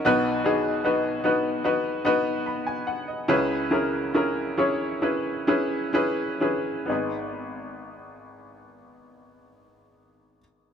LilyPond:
<<
  \new Staff \with { instrumentName = "Upright piano" } { \time 4/4 \key gis \minor \tempo 4 = 67 << { r2. b''16 gis''16 fis''16 dis''16~ | dis''16 r2. r8. | r1 | } \\ { <b dis' fis' b'>8 <b dis' fis' gis'>8 <b dis' fis' b'>8 <b dis' fis' b'>8 <b dis' fis' b'>8 <b dis' fis' b'>8 r4 | <cis' e' gis' b'>8 <cis' e' gis' ais'>8 <cis' e' gis' ais'>8 <cis' e' gis' cis''>8 <cis' e' gis' b'>8 <cis' e' gis' b'>8 <cis' e' gis' b'>8 <cis' e' gis' b'>8 | <b dis' gis' b'>1 | } >> }
  \new Staff \with { instrumentName = "Upright piano" } { \clef bass \time 4/4 \key gis \minor <b,, b,>1 | <cis, cis>1 | gis,,1 | }
>>